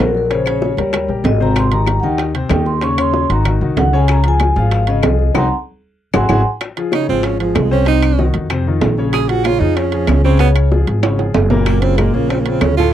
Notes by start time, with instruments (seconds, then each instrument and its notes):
0.00 upright bass A#1, grand piano F#3 F#4 A#4, vibraphone A#4, high timbale, low timbale
0.15 vibraphone A#4, high bongo
0.31 grand piano C#3 C#4 C#5, vibraphone C5, high bongo, high timbale
0.46 grand piano C#3 C#4 C#5, vibraphone C#5, high bongo, high timbale, claves
0.62 high bongo, low timbale
0.77 upright bass D#2, grand piano G3 G4 A#4, high bongo, high timbale
0.93 grand piano G3 G4 A#4, high bongo, high timbale, claves
1.08 upright bass A#1, grand piano G3 G4 A#4
1.24 upright bass G#1, vibraphone D#5, high bongo, low bongo, high timbale, low timbale
1.40 grand piano C3 C4 C5, vibraphone A#5, high bongo
1.56 vibraphone C6, high bongo, high timbale, claves
1.71 grand piano D#3 D#4 G4, vibraphone A#5, high bongo, high timbale
1.86 high bongo, high timbale, low timbale, claves
2.00 upright bass D#2, grand piano D#3 D#4, vibraphone F#5 G5, high bongo
2.04 grand piano G4
2.18 high bongo, high timbale
2.34 grand piano C3 C4 C5, high timbale
2.49 upright bass D#2, grand piano D#3 D#4 G4, vibraphone G5, high bongo, low bongo, high timbale, low timbale, claves
2.65 vibraphone C6, high bongo
2.81 grand piano C#3 C#4 C#5, vibraphone C#6, high bongo, high timbale
2.98 grand piano C#3 C#4 C#5, vibraphone C6, high bongo, high timbale, claves
3.13 high bongo, low timbale
3.29 upright bass G#1, grand piano D#3 D#4 F#4, vibraphone A#5, high bongo, high timbale
3.45 grand piano D#3 D#4 F#4, high bongo, high timbale, claves
3.61 upright bass C2, grand piano D#3 D#4 F#4
3.77 upright bass C#2, vibraphone F#5, high bongo, low bongo, high timbale, low timbale
3.93 grand piano C#3 C#4 C#5, vibraphone G#5, high bongo
4.08 vibraphone A#5, high bongo, high timbale, claves
4.24 grand piano F3 F4 G#4, high bongo, high timbale
4.28 vibraphone G#5
4.40 high bongo, high timbale, low timbale, claves
4.56 upright bass G#1, grand piano F3 F4 G#4, vibraphone F5, high bongo
4.71 vibraphone F5, high bongo, high timbale
4.87 grand piano C#3 C#4 C#5, vibraphone D#5, high timbale
5.03 upright bass C2, grand piano F3 F4 G#4, high bongo, low bongo, high timbale, low timbale, claves
5.19 high bongo
5.35 upright bass C2, grand piano C4 D#4 F#4, vibraphone F#5 A#5 C6, low bongo, high timbale, claves
6.14 upright bass G#1, grand piano E4 F#4 G#4, vibraphone F#5 G#5 C6, low bongo, high timbale, claves
6.29 upright bass G#1, grand piano E4 F#4 G#4, vibraphone F#5 G#5 C6, low bongo, high timbale, claves
6.61 high bongo, high timbale, claves
6.77 grand piano F3 F4 G#4, high bongo, high timbale
6.92 grand piano C#3 C#4 C#5, tenor saxophone D#4, high bongo, high timbale, low timbale, claves
7.08 upright bass G#1, grand piano F3 F4 G#4, tenor saxophone C4, high bongo
7.23 tenor saxophone C#4, high bongo, high timbale
7.40 tenor saxophone F3, grand piano F3 F4 G#4, high timbale
7.55 upright bass C2, tenor saxophone G#3, high bongo, low bongo, high timbale, low timbale, claves
7.71 grand piano C3 C4 C5, tenor saxophone C#4, high bongo
7.86 grand piano C3 C4 C5, tenor saxophone D#4, high bongo, high timbale
8.03 high bongo, high timbale, claves
8.19 grand piano D#3 D#4 F#4, high bongo, low timbale
8.34 upright bass F2, high bongo, high timbale
8.50 grand piano C3 C4 C5, high bongo, high timbale, claves
8.67 grand piano D#3 D#4 F4
8.81 upright bass A#1, high bongo, low bongo, high timbale, low timbale
8.98 grand piano C#3 C#4 C#5, high bongo
9.13 tenor saxophone G#4, high bongo, high timbale, claves
9.29 grand piano F3 F4 G#4, tenor saxophone F#4, high bongo, high timbale
9.44 grand piano C#3 C#4 C#5, tenor saxophone F4, high bongo, high timbale, low timbale, claves
9.60 upright bass F2, grand piano F3 F4 G#4, tenor saxophone D#4, high bongo
9.77 tenor saxophone C#4, high bongo, high timbale
9.92 grand piano F3 F4 G#4, high timbale
10.07 upright bass C#2, high bongo, low bongo, high timbale, low timbale, claves
10.24 grand piano C#3 C#4 C#5, tenor saxophone C4, high bongo
10.39 grand piano C#3 C#4 C#5, tenor saxophone B3, high bongo, high timbale
10.56 high bongo, high timbale, claves
10.71 grand piano F3 F4 G#4, high bongo, low timbale
10.87 upright bass G#1, high bongo, high timbale
11.03 grand piano C#3 C#4 C#5, high bongo, high timbale, claves
11.19 grand piano F3 F4 G#4, high timbale
11.34 upright bass F#1, high bongo, low bongo, low timbale
11.50 grand piano A#2 A#3 A#4, high bongo, low timbale
11.66 tenor saxophone A#3, high bongo, high timbale, claves
11.81 grand piano C#3 C#4 F4, tenor saxophone C4, high bongo, high timbale
11.98 grand piano A#2 A#3 A#4, tenor saxophone G#3, high bongo, high timbale, low timbale, claves
12.13 upright bass A#1, grand piano C#3 C#4 F4, tenor saxophone A#3, high bongo
12.30 tenor saxophone C4, high bongo, high timbale
12.41 tenor saxophone A#3
12.46 grand piano C#3 C#4 F4, high timbale
12.50 tenor saxophone C4
12.61 upright bass D2, tenor saxophone C#4, high bongo, low bongo, high timbale, low timbale, claves
12.77 grand piano A2 A3 A4, tenor saxophone F4, high bongo